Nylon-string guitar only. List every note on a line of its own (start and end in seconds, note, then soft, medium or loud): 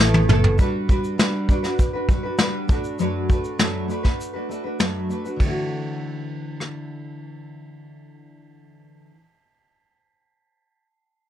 0.00 0.27 A3 medium
0.00 0.28 B3 medium
0.00 0.29 E4 loud
0.00 0.29 A4 loud
0.28 0.57 A3 medium
0.28 0.58 B3 medium
0.28 0.59 E4 medium
0.28 0.59 A4 medium
0.58 0.87 G3 medium
0.58 0.89 D4 medium
0.58 0.89 F#4 medium
0.58 0.89 B4 medium
0.88 1.17 G3 medium
0.88 1.18 D4 medium
0.88 1.18 F#4 medium
0.88 1.18 B4 medium
1.18 1.47 G3 medium
1.18 1.48 D4 medium
1.18 1.49 F#4 medium
1.18 1.49 B4 medium
1.49 1.64 G3 medium
1.49 1.64 D4 medium
1.49 1.63 F#4 medium
1.49 1.61 B4 medium
1.63 1.95 D4 soft
1.63 1.93 F#4 soft
1.63 1.92 B4 medium
1.93 2.08 D4 soft
1.93 2.09 F#4 medium
1.93 2.08 B4 medium
2.08 2.24 G3 medium
2.08 2.24 D4 medium
2.08 2.23 F#4 medium
2.08 2.22 B4 medium
2.23 2.38 D4 soft
2.23 2.39 F#4 medium
2.23 2.38 B4 medium
2.38 2.69 G3 medium
2.38 2.69 D4 medium
2.38 2.69 F#4 medium
2.38 2.70 B4 medium
2.69 2.99 A3 medium
2.69 2.99 D4 medium
2.69 3.00 F#4 medium
2.69 3.00 B4 medium
2.99 3.29 F#2 medium
2.99 3.29 F#3 medium
2.99 3.27 A3 medium
2.99 3.29 D4 medium
2.99 3.29 F#4 medium
2.99 3.30 B4 medium
3.28 3.58 A3 medium
3.28 3.58 D4 medium
3.28 3.59 F#4 medium
3.28 3.59 B4 medium
3.58 3.89 F#2 medium
3.58 3.89 F#3 medium
3.58 3.87 A3 medium
3.58 3.88 D4 medium
3.58 3.89 F#4 medium
3.58 3.90 B4 medium
3.88 4.04 A3 medium
3.88 4.04 D4 medium
3.88 4.03 F#4 medium
3.88 4.02 B4 medium
4.03 4.35 A3 soft
4.03 4.34 D4 soft
4.03 4.33 F#4 soft
4.03 4.32 B4 medium
4.33 4.48 A3 soft
4.33 4.48 D4 soft
4.33 4.49 F#4 soft
4.33 4.49 B4 soft
4.49 4.64 A3 medium
4.49 4.64 D4 medium
4.49 4.63 F#4 medium
4.49 4.63 B4 medium
4.64 4.79 A3 soft
4.64 4.79 D4 soft
4.64 4.79 F#4 soft
4.64 4.79 B4 soft
4.79 5.09 F#2 medium
4.79 5.10 F#3 medium
4.79 5.08 A3 medium
4.79 5.09 D4 medium
4.79 5.10 F#4 medium
4.79 5.10 B4 medium
5.09 5.24 A3 soft
5.09 5.25 D4 medium
5.09 5.24 F#4 medium
5.09 5.23 B4 medium
5.24 5.40 A3 soft
5.24 5.40 D4 soft
5.24 5.40 F#4 soft
5.24 5.40 B4 soft
5.36 9.11 D3 medium
5.36 9.15 E3 medium
5.43 9.18 A3 medium
5.43 9.21 E4 medium
5.49 9.24 F#4 medium